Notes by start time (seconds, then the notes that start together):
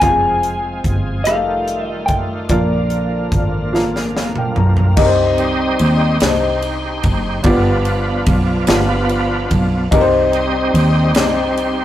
Already playing: C4
0.00 F1 F3 G#3 C4 F4 G4 G#4 F5 G#5, kick, closed hi-hat
0.04 F3
0.09 G#4
0.43 closed hi-hat
0.84 G1, kick, closed hi-hat
1.24 F1 D#3 G3 A3 D#4 F4 G4 G#4 F5, cross-stick, closed hi-hat
1.29 F5
1.34 A4
1.68 closed hi-hat
1.86 D#5
2.06 A1 G5, kick, closed hi-hat
2.49 A#1 A#2 D3 F3 A#3 D4 F4 A#4 D5 F5, kick, closed hi-hat
2.90 closed hi-hat
3.32 G#1, kick, closed hi-hat
3.73 D4 F4 A#4 F5, snare
3.96 snare
4.16 F5, snare
4.36 G5, mid tom
4.56 B1 A#5, floor tom
4.77 floor tom
4.96 C2 C3 G3 C4 D#4 G4, kick, crash
5.00 A#4
5.06 C5
5.38 G4 C5 D#5, ride
5.79 D#2, ride
6.20 C2 D4 D#4 G4 C5, snare, ride
6.25 D#4 C5
6.62 ride
7.03 F#1, kick, ride
7.43 G1 G2 F3 B3 D4 F4 G4 B4 D5, kick, ride
7.85 ride
8.26 B1, kick, ride
8.67 G1 B3 D4 F4 G4 B4 F5, snare, ride
8.71 D4
9.09 ride
9.49 B1 F3 B3 D4, kick, ride
9.91 C2 C3 G3 C4 D#4 G4 A#4, kick, ride
10.01 C5
10.33 G4 C5 D#5, ride
10.74 D#2, ride
11.15 C2 D4 D#4 G4 C5, snare, ride
11.19 D#4 D5
11.57 ride